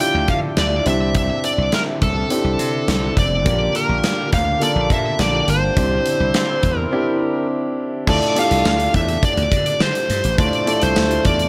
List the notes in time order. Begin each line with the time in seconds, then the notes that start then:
Already playing: D3 F3 A4 E5
0.00 D4 E4 F4 G4 G5, closed hi-hat
0.15 D2
0.28 D3 F5, kick, closed hi-hat
0.57 D2 D5, snare, closed hi-hat
0.85 C2 C4 D4 E4 G4 E5, closed hi-hat
1.15 E5, kick, closed hi-hat
1.44 D5, closed hi-hat
1.58 C2
1.72 A#4, snare, closed hi-hat
2.02 C2 A4, kick, closed hi-hat
2.30 C4 D4 E4 G4, closed hi-hat
2.44 C2
2.59 C3, closed hi-hat
2.88 C2, snare, closed hi-hat
3.17 F1 D5, kick, closed hi-hat
3.45 A#1 D3 A#3 D4 F4 G4, kick, closed hi-hat
3.75 A#4, closed hi-hat
3.89 A#1
4.04 snare, closed hi-hat
4.33 D2 F5, kick, closed hi-hat
4.60 A#3 D4 F4 A4 D5, closed hi-hat
4.76 A#1
4.90 A#2 E5, kick, closed hi-hat
5.19 A#1 D5, snare, closed hi-hat
5.48 G1 C5, closed hi-hat
5.76 C2 C4 D4 E4 G4, kick, closed hi-hat
6.06 closed hi-hat
6.20 C2
6.34 snare, closed hi-hat
6.63 E2, kick, closed hi-hat
6.78 A#4
6.91 C4 D4 E4 G4
8.07 D2 A3 D4 E4 F4 A4 D5, kick, crash
8.22 closed hi-hat
8.35 A3 D4 E4 F4 G4 F5, closed hi-hat
8.51 C2, closed hi-hat
8.65 D2 F5, snare, tambourine
8.80 closed hi-hat
8.94 E2 E5, kick, closed hi-hat
9.08 closed hi-hat
9.23 D5, kick, closed hi-hat
9.37 D2, closed hi-hat
9.52 D3, kick, closed hi-hat
9.66 closed hi-hat
9.80 D3 C5, snare, tambourine
9.95 closed hi-hat
10.10 G2, closed hi-hat
10.24 A1, closed hi-hat
10.38 D2 A3 D4 E4 F4 C5 D5, kick, closed hi-hat
10.53 closed hi-hat
10.66 A3 D4 E4 F4 A4, closed hi-hat
10.82 C2 C5, closed hi-hat
10.96 D2, snare, tambourine
11.11 closed hi-hat
11.25 E2 D5, kick, closed hi-hat
11.39 closed hi-hat